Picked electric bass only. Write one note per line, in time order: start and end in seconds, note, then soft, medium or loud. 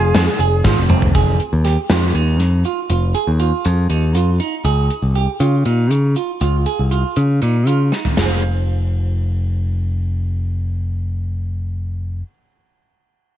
0.00 0.12 F1 medium
0.15 0.26 F2 medium
0.39 0.63 F1 medium
0.65 0.76 G#1 medium
0.78 1.13 F1 medium
1.15 1.38 F1 medium
1.53 1.76 D#2 medium
1.90 2.13 F2 medium
2.15 2.39 D#2 medium
2.39 2.63 F2 medium
2.90 3.13 F1 medium
3.27 3.51 D#2 medium
3.66 3.89 F2 medium
3.89 4.15 D#2 medium
4.15 4.39 F2 medium
4.65 4.88 C#2 medium
5.02 5.26 C2 medium
5.40 5.64 C#3 medium
5.66 5.91 A#2 medium
5.91 6.14 C#3 medium
6.41 6.65 C#2 medium
6.79 7.03 C2 medium
7.17 7.40 C#3 medium
7.42 7.67 A#2 medium
7.67 7.90 C#3 medium
8.17 12.21 F1 medium